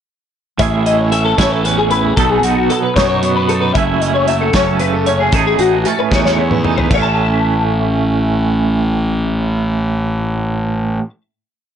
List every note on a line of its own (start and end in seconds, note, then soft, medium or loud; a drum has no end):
0.59 1.34 A1 medium
0.59 1.64 A2 medium
0.59 1.12 C#4 medium
0.59 0.86 E4 medium
0.59 2.15 G#4 medium
0.59 0.85 E5 medium
0.59 kick medium
0.59 closed hi-hat medium
0.86 1.37 E4 soft
0.86 0.99 D#5 medium
0.86 closed hi-hat medium
0.99 1.11 C#5 medium
1.11 2.21 A3 medium
1.11 1.65 C#4 medium
1.11 1.24 E5 medium
1.11 closed hi-hat medium
1.25 1.38 A4 medium
1.38 2.13 A1 medium
1.38 1.91 E4 soft
1.38 1.51 C#5 medium
1.38 kick medium
1.38 snare medium
1.38 closed hi-hat medium
1.51 1.64 A4 medium
1.64 2.17 E2 medium
1.64 2.14 C#4 medium
1.64 1.77 B4 medium
1.64 closed hi-hat medium
1.78 1.90 G#4 medium
1.91 2.14 E4 soft
1.91 2.03 B4 medium
1.91 closed hi-hat medium
2.03 2.16 G#4 medium
2.16 2.42 B1 medium
2.16 3.22 B2 medium
2.16 2.70 B3 soft
2.16 2.44 D#4 medium
2.16 2.30 A4 medium
2.16 3.77 A4 medium
2.16 kick medium
2.16 closed hi-hat medium
2.30 2.43 G#4 medium
2.43 2.68 B1 medium
2.43 2.96 D#4 medium
2.43 2.69 F#4 medium
2.43 closed hi-hat medium
2.69 3.72 F#3 medium
2.69 3.22 B3 medium
2.69 2.82 A4 medium
2.69 closed hi-hat medium
2.82 2.95 B4 medium
2.96 3.71 F#2 medium
2.96 3.49 D#4 soft
2.96 3.08 C#5 medium
2.96 kick medium
2.96 snare medium
2.96 closed hi-hat medium
3.09 3.35 C#5 medium
3.23 3.72 B2 medium
3.23 3.72 B3 medium
3.23 closed hi-hat medium
3.36 3.49 B4 medium
3.48 3.73 D#4 medium
3.48 3.61 A4 medium
3.48 closed hi-hat medium
3.61 3.74 B4 medium
3.74 4.50 F#1 medium
3.74 5.30 F#2 medium
3.74 4.29 A3 medium
3.74 4.03 C#4 soft
3.74 5.35 E4 medium
3.74 4.01 E5 medium
3.74 kick medium
3.74 closed hi-hat medium
4.01 4.55 C#4 soft
4.01 4.14 D#5 medium
4.01 closed hi-hat medium
4.14 4.27 C#5 medium
4.28 5.30 F#3 medium
4.28 4.81 A3 medium
4.28 4.41 E5 medium
4.28 closed hi-hat medium
4.41 4.54 A4 medium
4.53 5.29 F#1 medium
4.53 5.08 C#4 medium
4.53 4.67 C#5 medium
4.53 kick medium
4.53 snare loud
4.53 closed hi-hat medium
4.67 4.79 A4 medium
4.79 5.30 C#3 medium
4.79 5.33 A3 medium
4.79 4.93 B4 medium
4.79 closed hi-hat soft
4.93 5.06 A4 medium
5.06 5.34 C#4 medium
5.06 5.19 C#5 medium
5.06 closed hi-hat soft
5.20 5.33 G#4 medium
5.32 5.57 A1 medium
5.32 6.38 A2 medium
5.32 5.85 C#4 medium
5.32 5.58 D#4 medium
5.32 6.89 G#4 medium
5.32 5.46 A4 medium
5.32 kick medium
5.32 closed hi-hat medium
5.46 5.59 G#4 medium
5.59 5.84 A1 medium
5.59 6.11 D#4 soft
5.59 5.86 F#4 medium
5.59 closed hi-hat medium
5.85 6.88 A3 medium
5.85 6.38 C#4 soft
5.85 5.99 A4 medium
5.85 closed hi-hat medium
5.99 6.12 B4 medium
6.11 6.86 E2 medium
6.11 6.64 D#4 soft
6.11 6.24 C#5 medium
6.11 kick medium
6.11 snare medium
6.25 6.51 C#5 medium
6.25 snare soft
6.38 6.91 E2 medium
6.38 6.88 C#4 soft
6.51 6.64 B4 medium
6.51 mid tom medium
6.64 6.88 D#4 soft
6.64 6.77 A4 medium
6.64 mid tom medium
6.77 6.90 B4 medium
6.77 floor tom medium
6.90 10.98 A1 medium
6.90 11.02 A2 medium
6.90 11.04 A3 medium
6.90 6.98 C#5 medium
6.90 kick medium
6.90 splash medium
6.95 11.06 C#4 medium
6.95 11.09 E5 medium
7.02 11.09 A5 medium